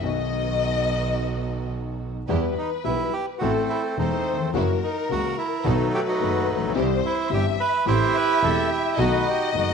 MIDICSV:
0, 0, Header, 1, 6, 480
1, 0, Start_track
1, 0, Key_signature, 1, "minor"
1, 0, Tempo, 561798
1, 26, Time_signature, 4, 2, 24, 8
1, 4827, Tempo, 554017
1, 8369, End_track
2, 0, Start_track
2, 0, Title_t, "Violin section"
2, 0, Program_c, 0, 48
2, 44, Note_on_c, 0, 75, 116
2, 1441, Note_off_c, 0, 75, 0
2, 1958, Note_on_c, 0, 71, 96
2, 2883, Note_off_c, 0, 71, 0
2, 2926, Note_on_c, 0, 69, 92
2, 3367, Note_off_c, 0, 69, 0
2, 3403, Note_on_c, 0, 72, 98
2, 3844, Note_off_c, 0, 72, 0
2, 3877, Note_on_c, 0, 70, 110
2, 4831, Note_off_c, 0, 70, 0
2, 4838, Note_on_c, 0, 71, 104
2, 5793, Note_off_c, 0, 71, 0
2, 5793, Note_on_c, 0, 72, 113
2, 6236, Note_off_c, 0, 72, 0
2, 6261, Note_on_c, 0, 76, 108
2, 6737, Note_off_c, 0, 76, 0
2, 6747, Note_on_c, 0, 76, 114
2, 7673, Note_off_c, 0, 76, 0
2, 7711, Note_on_c, 0, 75, 127
2, 8369, Note_off_c, 0, 75, 0
2, 8369, End_track
3, 0, Start_track
3, 0, Title_t, "Bandoneon"
3, 0, Program_c, 1, 23
3, 2204, Note_on_c, 1, 63, 76
3, 2310, Note_off_c, 1, 63, 0
3, 2428, Note_on_c, 1, 64, 94
3, 2675, Note_on_c, 1, 67, 107
3, 2678, Note_off_c, 1, 64, 0
3, 2783, Note_off_c, 1, 67, 0
3, 2894, Note_on_c, 1, 66, 89
3, 2913, Note_on_c, 1, 57, 70
3, 2916, Note_on_c, 1, 60, 69
3, 3006, Note_off_c, 1, 66, 0
3, 3157, Note_on_c, 1, 64, 91
3, 3264, Note_off_c, 1, 64, 0
3, 3397, Note_off_c, 1, 57, 0
3, 3400, Note_off_c, 1, 60, 0
3, 3403, Note_on_c, 1, 63, 77
3, 3410, Note_on_c, 1, 57, 57
3, 3413, Note_on_c, 1, 60, 55
3, 3733, Note_off_c, 1, 63, 0
3, 3848, Note_off_c, 1, 57, 0
3, 3849, Note_off_c, 1, 60, 0
3, 4128, Note_on_c, 1, 63, 79
3, 4343, Note_off_c, 1, 63, 0
3, 4372, Note_on_c, 1, 66, 109
3, 4585, Note_off_c, 1, 66, 0
3, 4599, Note_on_c, 1, 64, 98
3, 4840, Note_off_c, 1, 64, 0
3, 4856, Note_on_c, 1, 57, 70
3, 4856, Note_on_c, 1, 63, 91
3, 4858, Note_on_c, 1, 54, 72
3, 5068, Note_off_c, 1, 63, 0
3, 5083, Note_on_c, 1, 67, 122
3, 5134, Note_off_c, 1, 67, 0
3, 5195, Note_off_c, 1, 57, 0
3, 5202, Note_on_c, 1, 63, 79
3, 5202, Note_on_c, 1, 66, 94
3, 5208, Note_on_c, 1, 57, 69
3, 5532, Note_off_c, 1, 66, 0
3, 5760, Note_off_c, 1, 63, 0
3, 5763, Note_off_c, 1, 57, 0
3, 5768, Note_off_c, 1, 54, 0
3, 6045, Note_on_c, 1, 64, 103
3, 6260, Note_off_c, 1, 64, 0
3, 6290, Note_on_c, 1, 67, 114
3, 6393, Note_off_c, 1, 67, 0
3, 6518, Note_on_c, 1, 71, 117
3, 6738, Note_off_c, 1, 71, 0
3, 6755, Note_on_c, 1, 67, 90
3, 6756, Note_on_c, 1, 64, 93
3, 6761, Note_on_c, 1, 72, 109
3, 7003, Note_off_c, 1, 72, 0
3, 7009, Note_on_c, 1, 71, 116
3, 7242, Note_on_c, 1, 69, 98
3, 7246, Note_off_c, 1, 71, 0
3, 7459, Note_off_c, 1, 69, 0
3, 7477, Note_off_c, 1, 64, 0
3, 7490, Note_on_c, 1, 64, 94
3, 7677, Note_off_c, 1, 67, 0
3, 7726, Note_off_c, 1, 64, 0
3, 7727, Note_on_c, 1, 66, 76
3, 7729, Note_on_c, 1, 63, 78
3, 7735, Note_on_c, 1, 71, 103
3, 7969, Note_off_c, 1, 71, 0
3, 7987, Note_on_c, 1, 67, 97
3, 8192, Note_off_c, 1, 67, 0
3, 8216, Note_off_c, 1, 66, 0
3, 8229, Note_on_c, 1, 66, 82
3, 8369, Note_off_c, 1, 63, 0
3, 8369, Note_off_c, 1, 66, 0
3, 8369, End_track
4, 0, Start_track
4, 0, Title_t, "String section"
4, 0, Program_c, 2, 48
4, 28, Note_on_c, 2, 59, 85
4, 29, Note_on_c, 2, 63, 80
4, 30, Note_on_c, 2, 66, 95
4, 1855, Note_off_c, 2, 59, 0
4, 1855, Note_off_c, 2, 63, 0
4, 1855, Note_off_c, 2, 66, 0
4, 1954, Note_on_c, 2, 59, 83
4, 1954, Note_on_c, 2, 64, 76
4, 1955, Note_on_c, 2, 67, 87
4, 2154, Note_off_c, 2, 59, 0
4, 2154, Note_off_c, 2, 64, 0
4, 2155, Note_off_c, 2, 67, 0
4, 2440, Note_on_c, 2, 59, 53
4, 2444, Note_on_c, 2, 64, 45
4, 2444, Note_on_c, 2, 67, 53
4, 2638, Note_off_c, 2, 59, 0
4, 2640, Note_off_c, 2, 64, 0
4, 2640, Note_off_c, 2, 67, 0
4, 2923, Note_on_c, 2, 60, 87
4, 2923, Note_on_c, 2, 64, 68
4, 2926, Note_on_c, 2, 69, 83
4, 3120, Note_off_c, 2, 60, 0
4, 3120, Note_off_c, 2, 64, 0
4, 3122, Note_off_c, 2, 69, 0
4, 3405, Note_on_c, 2, 60, 55
4, 3406, Note_on_c, 2, 64, 43
4, 3409, Note_on_c, 2, 69, 61
4, 3600, Note_off_c, 2, 60, 0
4, 3601, Note_off_c, 2, 64, 0
4, 3603, Note_off_c, 2, 69, 0
4, 3886, Note_on_c, 2, 58, 89
4, 3891, Note_on_c, 2, 64, 79
4, 3891, Note_on_c, 2, 66, 95
4, 4080, Note_off_c, 2, 58, 0
4, 4083, Note_off_c, 2, 64, 0
4, 4083, Note_off_c, 2, 66, 0
4, 4357, Note_on_c, 2, 64, 52
4, 4358, Note_on_c, 2, 66, 63
4, 4359, Note_on_c, 2, 58, 54
4, 4555, Note_off_c, 2, 64, 0
4, 4556, Note_off_c, 2, 58, 0
4, 4556, Note_off_c, 2, 66, 0
4, 4833, Note_on_c, 2, 59, 83
4, 4836, Note_on_c, 2, 63, 74
4, 4836, Note_on_c, 2, 69, 99
4, 5034, Note_off_c, 2, 59, 0
4, 5035, Note_off_c, 2, 63, 0
4, 5036, Note_off_c, 2, 69, 0
4, 5310, Note_on_c, 2, 59, 50
4, 5310, Note_on_c, 2, 63, 45
4, 5315, Note_on_c, 2, 69, 62
4, 5512, Note_off_c, 2, 59, 0
4, 5512, Note_off_c, 2, 63, 0
4, 5515, Note_off_c, 2, 69, 0
4, 5782, Note_on_c, 2, 60, 91
4, 5784, Note_on_c, 2, 64, 78
4, 5790, Note_on_c, 2, 67, 94
4, 5985, Note_off_c, 2, 60, 0
4, 5986, Note_off_c, 2, 64, 0
4, 5989, Note_off_c, 2, 67, 0
4, 6258, Note_on_c, 2, 60, 56
4, 6261, Note_on_c, 2, 67, 56
4, 6263, Note_on_c, 2, 64, 50
4, 6465, Note_off_c, 2, 60, 0
4, 6467, Note_off_c, 2, 67, 0
4, 6468, Note_off_c, 2, 64, 0
4, 6748, Note_on_c, 2, 60, 86
4, 6750, Note_on_c, 2, 67, 71
4, 6751, Note_on_c, 2, 69, 88
4, 6951, Note_off_c, 2, 60, 0
4, 6952, Note_off_c, 2, 67, 0
4, 6952, Note_off_c, 2, 69, 0
4, 7219, Note_on_c, 2, 60, 56
4, 7223, Note_on_c, 2, 69, 55
4, 7224, Note_on_c, 2, 67, 55
4, 7426, Note_off_c, 2, 60, 0
4, 7427, Note_off_c, 2, 69, 0
4, 7428, Note_off_c, 2, 67, 0
4, 7695, Note_on_c, 2, 63, 87
4, 7699, Note_on_c, 2, 59, 89
4, 7700, Note_on_c, 2, 69, 102
4, 7903, Note_off_c, 2, 63, 0
4, 7905, Note_off_c, 2, 59, 0
4, 7906, Note_off_c, 2, 69, 0
4, 8186, Note_on_c, 2, 59, 53
4, 8187, Note_on_c, 2, 69, 57
4, 8188, Note_on_c, 2, 63, 48
4, 8369, Note_off_c, 2, 59, 0
4, 8369, Note_off_c, 2, 63, 0
4, 8369, Note_off_c, 2, 69, 0
4, 8369, End_track
5, 0, Start_track
5, 0, Title_t, "Grand piano"
5, 0, Program_c, 3, 0
5, 10, Note_on_c, 3, 51, 72
5, 21, Note_on_c, 3, 54, 57
5, 28, Note_on_c, 3, 35, 78
5, 28, Note_on_c, 3, 47, 73
5, 32, Note_on_c, 3, 59, 56
5, 43, Note_on_c, 3, 66, 73
5, 1846, Note_off_c, 3, 51, 0
5, 1851, Note_off_c, 3, 54, 0
5, 1854, Note_off_c, 3, 35, 0
5, 1854, Note_off_c, 3, 47, 0
5, 1857, Note_off_c, 3, 59, 0
5, 1862, Note_off_c, 3, 66, 0
5, 1955, Note_on_c, 3, 52, 91
5, 1957, Note_on_c, 3, 59, 66
5, 1959, Note_on_c, 3, 40, 89
5, 1959, Note_on_c, 3, 55, 62
5, 1961, Note_on_c, 3, 67, 80
5, 2156, Note_off_c, 3, 59, 0
5, 2157, Note_off_c, 3, 40, 0
5, 2157, Note_off_c, 3, 52, 0
5, 2157, Note_off_c, 3, 55, 0
5, 2158, Note_off_c, 3, 67, 0
5, 2425, Note_on_c, 3, 55, 46
5, 2429, Note_on_c, 3, 47, 56
5, 2430, Note_on_c, 3, 52, 47
5, 2431, Note_on_c, 3, 67, 60
5, 2432, Note_on_c, 3, 35, 53
5, 2435, Note_on_c, 3, 59, 46
5, 2631, Note_off_c, 3, 55, 0
5, 2633, Note_off_c, 3, 47, 0
5, 2633, Note_off_c, 3, 52, 0
5, 2634, Note_off_c, 3, 35, 0
5, 2634, Note_off_c, 3, 67, 0
5, 2636, Note_off_c, 3, 59, 0
5, 2916, Note_on_c, 3, 52, 70
5, 2917, Note_on_c, 3, 45, 86
5, 2917, Note_on_c, 3, 57, 63
5, 2918, Note_on_c, 3, 60, 71
5, 2919, Note_on_c, 3, 33, 80
5, 2922, Note_on_c, 3, 69, 82
5, 3116, Note_off_c, 3, 52, 0
5, 3117, Note_off_c, 3, 45, 0
5, 3117, Note_off_c, 3, 57, 0
5, 3117, Note_off_c, 3, 60, 0
5, 3118, Note_off_c, 3, 33, 0
5, 3120, Note_off_c, 3, 69, 0
5, 3396, Note_on_c, 3, 52, 55
5, 3398, Note_on_c, 3, 40, 67
5, 3398, Note_on_c, 3, 57, 47
5, 3399, Note_on_c, 3, 28, 63
5, 3401, Note_on_c, 3, 60, 48
5, 3405, Note_on_c, 3, 69, 55
5, 3596, Note_off_c, 3, 52, 0
5, 3597, Note_off_c, 3, 28, 0
5, 3597, Note_off_c, 3, 40, 0
5, 3597, Note_off_c, 3, 57, 0
5, 3599, Note_off_c, 3, 60, 0
5, 3601, Note_off_c, 3, 69, 0
5, 3698, Note_on_c, 3, 39, 66
5, 3755, Note_off_c, 3, 39, 0
5, 3760, Note_on_c, 3, 40, 67
5, 3816, Note_off_c, 3, 40, 0
5, 3820, Note_on_c, 3, 41, 67
5, 3876, Note_off_c, 3, 41, 0
5, 3876, Note_on_c, 3, 52, 82
5, 3879, Note_on_c, 3, 58, 73
5, 3880, Note_on_c, 3, 42, 88
5, 3881, Note_on_c, 3, 54, 83
5, 3884, Note_on_c, 3, 61, 70
5, 3886, Note_on_c, 3, 66, 91
5, 4075, Note_off_c, 3, 52, 0
5, 4077, Note_off_c, 3, 42, 0
5, 4077, Note_off_c, 3, 58, 0
5, 4078, Note_off_c, 3, 54, 0
5, 4079, Note_off_c, 3, 61, 0
5, 4080, Note_off_c, 3, 66, 0
5, 4352, Note_on_c, 3, 61, 51
5, 4354, Note_on_c, 3, 37, 59
5, 4354, Note_on_c, 3, 58, 47
5, 4355, Note_on_c, 3, 52, 50
5, 4359, Note_on_c, 3, 49, 64
5, 4360, Note_on_c, 3, 66, 52
5, 4552, Note_off_c, 3, 61, 0
5, 4553, Note_off_c, 3, 58, 0
5, 4554, Note_off_c, 3, 37, 0
5, 4554, Note_off_c, 3, 52, 0
5, 4556, Note_off_c, 3, 49, 0
5, 4557, Note_off_c, 3, 66, 0
5, 4822, Note_on_c, 3, 35, 91
5, 4822, Note_on_c, 3, 51, 69
5, 4824, Note_on_c, 3, 47, 81
5, 4825, Note_on_c, 3, 59, 73
5, 4826, Note_on_c, 3, 57, 64
5, 4827, Note_on_c, 3, 66, 75
5, 5028, Note_off_c, 3, 35, 0
5, 5028, Note_off_c, 3, 51, 0
5, 5029, Note_off_c, 3, 47, 0
5, 5030, Note_off_c, 3, 57, 0
5, 5030, Note_off_c, 3, 59, 0
5, 5031, Note_off_c, 3, 66, 0
5, 5307, Note_on_c, 3, 51, 62
5, 5310, Note_on_c, 3, 30, 67
5, 5310, Note_on_c, 3, 57, 53
5, 5312, Note_on_c, 3, 59, 56
5, 5314, Note_on_c, 3, 42, 67
5, 5317, Note_on_c, 3, 66, 62
5, 5511, Note_off_c, 3, 51, 0
5, 5512, Note_off_c, 3, 30, 0
5, 5512, Note_off_c, 3, 57, 0
5, 5513, Note_off_c, 3, 59, 0
5, 5514, Note_off_c, 3, 42, 0
5, 5515, Note_off_c, 3, 66, 0
5, 5615, Note_on_c, 3, 33, 67
5, 5672, Note_off_c, 3, 33, 0
5, 5675, Note_on_c, 3, 34, 61
5, 5727, Note_on_c, 3, 35, 89
5, 5732, Note_off_c, 3, 34, 0
5, 5783, Note_on_c, 3, 52, 73
5, 5786, Note_on_c, 3, 48, 102
5, 5787, Note_off_c, 3, 35, 0
5, 5787, Note_on_c, 3, 55, 74
5, 5790, Note_on_c, 3, 36, 92
5, 5791, Note_on_c, 3, 60, 80
5, 5792, Note_on_c, 3, 67, 94
5, 5986, Note_off_c, 3, 52, 0
5, 5987, Note_off_c, 3, 48, 0
5, 5987, Note_off_c, 3, 55, 0
5, 5989, Note_off_c, 3, 36, 0
5, 5990, Note_off_c, 3, 60, 0
5, 5990, Note_off_c, 3, 67, 0
5, 6256, Note_on_c, 3, 31, 67
5, 6259, Note_on_c, 3, 43, 71
5, 6259, Note_on_c, 3, 52, 57
5, 6261, Note_on_c, 3, 55, 49
5, 6261, Note_on_c, 3, 60, 50
5, 6262, Note_on_c, 3, 67, 68
5, 6464, Note_off_c, 3, 31, 0
5, 6466, Note_off_c, 3, 43, 0
5, 6466, Note_off_c, 3, 52, 0
5, 6467, Note_off_c, 3, 55, 0
5, 6467, Note_off_c, 3, 60, 0
5, 6468, Note_off_c, 3, 67, 0
5, 6738, Note_on_c, 3, 33, 93
5, 6740, Note_on_c, 3, 52, 74
5, 6740, Note_on_c, 3, 57, 74
5, 6742, Note_on_c, 3, 60, 72
5, 6743, Note_on_c, 3, 67, 88
5, 6744, Note_on_c, 3, 45, 85
5, 6946, Note_off_c, 3, 33, 0
5, 6947, Note_off_c, 3, 52, 0
5, 6947, Note_off_c, 3, 57, 0
5, 6948, Note_off_c, 3, 60, 0
5, 6949, Note_off_c, 3, 45, 0
5, 6949, Note_off_c, 3, 67, 0
5, 7226, Note_on_c, 3, 40, 67
5, 7227, Note_on_c, 3, 52, 54
5, 7227, Note_on_c, 3, 60, 57
5, 7231, Note_on_c, 3, 57, 57
5, 7231, Note_on_c, 3, 67, 62
5, 7232, Note_on_c, 3, 28, 71
5, 7429, Note_off_c, 3, 40, 0
5, 7429, Note_off_c, 3, 52, 0
5, 7430, Note_off_c, 3, 60, 0
5, 7431, Note_off_c, 3, 57, 0
5, 7431, Note_off_c, 3, 67, 0
5, 7432, Note_off_c, 3, 28, 0
5, 7712, Note_on_c, 3, 59, 68
5, 7714, Note_on_c, 3, 35, 93
5, 7714, Note_on_c, 3, 51, 75
5, 7714, Note_on_c, 3, 57, 75
5, 7716, Note_on_c, 3, 47, 98
5, 7721, Note_on_c, 3, 66, 87
5, 7912, Note_off_c, 3, 59, 0
5, 7913, Note_off_c, 3, 35, 0
5, 7913, Note_off_c, 3, 51, 0
5, 7913, Note_off_c, 3, 57, 0
5, 7914, Note_off_c, 3, 47, 0
5, 7916, Note_off_c, 3, 66, 0
5, 8187, Note_on_c, 3, 51, 51
5, 8189, Note_on_c, 3, 57, 47
5, 8191, Note_on_c, 3, 59, 48
5, 8192, Note_on_c, 3, 30, 59
5, 8194, Note_on_c, 3, 66, 58
5, 8195, Note_on_c, 3, 42, 58
5, 8369, Note_off_c, 3, 30, 0
5, 8369, Note_off_c, 3, 42, 0
5, 8369, Note_off_c, 3, 51, 0
5, 8369, Note_off_c, 3, 57, 0
5, 8369, Note_off_c, 3, 59, 0
5, 8369, Note_off_c, 3, 66, 0
5, 8369, End_track
6, 0, Start_track
6, 0, Title_t, "Double bass"
6, 0, Program_c, 4, 43
6, 23, Note_on_c, 4, 35, 100
6, 1852, Note_off_c, 4, 35, 0
6, 1951, Note_on_c, 4, 40, 107
6, 2153, Note_off_c, 4, 40, 0
6, 2436, Note_on_c, 4, 35, 70
6, 2636, Note_off_c, 4, 35, 0
6, 2917, Note_on_c, 4, 33, 92
6, 3117, Note_off_c, 4, 33, 0
6, 3399, Note_on_c, 4, 28, 65
6, 3598, Note_off_c, 4, 28, 0
6, 3875, Note_on_c, 4, 30, 99
6, 4075, Note_off_c, 4, 30, 0
6, 4354, Note_on_c, 4, 37, 69
6, 4554, Note_off_c, 4, 37, 0
6, 4826, Note_on_c, 4, 35, 109
6, 5030, Note_off_c, 4, 35, 0
6, 5310, Note_on_c, 4, 30, 75
6, 5512, Note_off_c, 4, 30, 0
6, 5550, Note_on_c, 4, 34, 61
6, 5784, Note_off_c, 4, 34, 0
6, 5789, Note_on_c, 4, 36, 123
6, 5989, Note_off_c, 4, 36, 0
6, 6269, Note_on_c, 4, 31, 81
6, 6471, Note_off_c, 4, 31, 0
6, 6752, Note_on_c, 4, 33, 106
6, 6953, Note_off_c, 4, 33, 0
6, 7232, Note_on_c, 4, 28, 81
6, 7432, Note_off_c, 4, 28, 0
6, 7710, Note_on_c, 4, 35, 100
6, 7911, Note_off_c, 4, 35, 0
6, 8194, Note_on_c, 4, 30, 66
6, 8369, Note_off_c, 4, 30, 0
6, 8369, End_track
0, 0, End_of_file